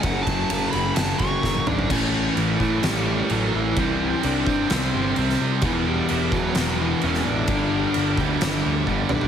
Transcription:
Already playing: C#4
0.02 F#1 F#2 C#3 F#3 F#5, kick, ride
0.23 A5
0.27 F#1 F#2 C#3 F#3, kick, ride
0.50 F#1 F#2 C#3 F#3, ride
0.71 F#1 F#2 C#3 F#3 B5, ride
0.94 F#1 F#2 C#3 A5, snare, ride
0.99 F#3
1.18 F#1 F#2 C#3 F#3 C#6, kick, ride
1.43 F#1 F#2 C#3 F#3, kick, snare
1.55 high tom
1.66 G#1 F#2 C#3 F#3 D4 D5, mid tom
1.79 floor tom
1.90 A1 A2 E3 C#4 E4 C#5 A5 C#6, kick, crash
1.94 A3
2.35 A1 E3 E4, crash
2.60 A2 E3 A3, kick
2.83 A1 A2 E3 G3 A3 G4, snare, crash
3.30 A1 A2 E3 F#3 A3 F#4, crash
3.54 A1 E3 E4
3.76 C2 C3 G3 C4 C5 E5 C6, kick, crash
4.23 C2 D4 D5, crash
4.47 G2 C3 G3 C4, kick
4.70 C2 C3 G3 C4 C5, snare, crash
4.94 G1
5.16 C2 C3 G3 C4, crash
5.29 snare
5.41 C3
5.62 E1 E2 B2 E3 E4 B4 B5, kick, crash
5.87 G3 G4
6.09 E1 G3 G4, crash
6.32 E2 B2 E3 F#3 F#4, kick
6.55 E1 E2 B2 E3, snare, crash
6.81 E3 E4
7.01 E1 E2 B2 E3 C#4 C#5, crash
7.14 snare
7.25 A1 D4 D5
7.47 G1 G2 D3 G3 G4 D5 B5 D6, kick, crash
7.94 G1, crash
8.17 D2 D3 G3, kick
8.21 G2
8.41 G1 G2 D3 G3, snare, crash
8.66 D2
8.87 G1 G2 D3 G3, kick
9.09 B1 D4 D5, mid tom
9.21 floor tom

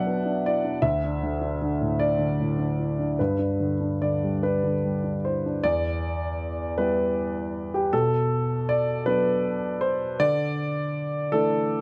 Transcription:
Already playing: B2 F#3 B3 D4 D5 E5 F#5
0.07 B3
0.26 D4
0.46 E4 D5
0.64 D4
0.82 D2 E5
1.04 D4
1.23 D3
1.41 D4
1.62 D3
1.81 A2
2.00 D4 D5
2.19 D3
2.40 A2
2.59 D4
2.79 E4
3.00 D4
3.19 G2 B4
3.39 D4
3.60 D3
3.80 D4
4.02 D3 D5
4.23 G3
4.43 D4 B4
4.63 D3
4.84 G3
5.04 D4
5.25 E4 C5
5.46 D4
5.64 E2 D5
6.78 G3 B3 E4 B4
7.74 G4
7.93 B2 A4
8.69 D5
9.06 F#3 B3 D4 B4
9.81 C5
10.20 D3 D5
11.32 E3 A3 D4 A4

